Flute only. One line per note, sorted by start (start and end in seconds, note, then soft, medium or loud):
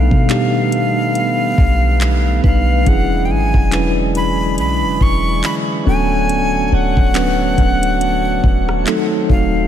0.00 2.41 F5 loud
2.46 2.90 F5 loud
2.88 3.27 F#5 loud
3.25 3.33 G5 medium
3.31 3.92 G#5 loud
4.17 4.56 B5 loud
4.59 5.04 B5 loud
5.02 5.45 C#6 loud
5.45 5.55 B5 loud
5.88 6.68 G#5 loud
6.68 6.75 G#5 medium
6.74 9.06 F#5 loud
9.31 9.68 F5 medium